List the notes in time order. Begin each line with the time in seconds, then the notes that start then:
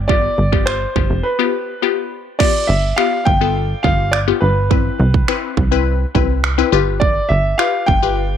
Already playing: G1
0.08 B3 F4 G4 D5, kick
0.38 G1
0.52 B3 F4 G4, kick
0.66 C5, finger snap
0.96 G1 B3 F4 G4, kick
1.10 F1
1.23 B4
1.39 B3 F4 G4
1.82 B3 F4 G4
2.39 B3 F4 G4 D5, kick, crash
2.67 G1 E5
2.96 B3 F4 G4 F5, finger snap
3.25 G1 G5, kick
3.41 B3 F4 A4
3.83 G1 B3 F4 G4 F5, kick
4.12 D5, finger snap
4.27 B3 F4 G4
4.41 G1 B4
4.71 C4 E4 B4, kick
5.00 C2
5.14 kick
5.28 C4 E4 B4, finger snap
5.57 C2, kick
5.71 C4 E4 B4
6.15 C2 C4 E4 B4, kick
6.44 finger snap
6.58 C4 E4 B4
6.72 G1 F4 G4 B4
7.00 D5, kick
7.29 G1 E5
7.58 F4 G4 B4 F5, finger snap
7.86 G1 G5, kick
8.02 F4 G4 B4